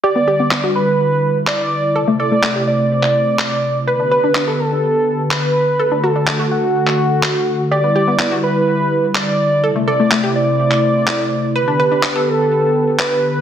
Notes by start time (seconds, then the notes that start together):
0.03 D3 G3 E4 G4 B4 D5
0.16 B3
0.28 G4
0.40 B3
0.51 B3, clap
0.64 F#4
0.76 B4
1.47 D5, clap
1.95 C3 A3 A4 C5
2.08 A3
2.20 A4 D5
2.32 A3
2.43 A3, clap
2.56 G4
2.67 D5
3.03 clap
3.39 clap
3.87 D3 B3 G4 B4
4.00 D4
4.11 B4
4.24 D4
4.35 D4, clap
4.48 A4
4.59 A4
5.31 B4, clap
5.79 A3 F#4 A4
5.92 D4
6.03 F#4 A4
6.16 D4
6.27 D4, clap
6.40 F#4
6.51 F#4
6.87 clap
7.23 clap
7.71 G3 E4 G4 B4 D5
7.84 B3
7.96 G4
8.08 B3
8.19 B3, clap
8.32 F#4
8.43 B4
9.15 D5, clap
9.63 C3 A3 E4 A4 C5
9.76 A3
9.87 A4 D5
10.00 A3
10.11 A3, clap
10.24 G4
10.36 D5
10.71 clap
11.07 clap
11.55 D3 B3 G4 B4
11.68 D4
11.80 B4
11.92 D4
12.03 D4, clap
12.16 A4
12.27 A4
12.99 B4, clap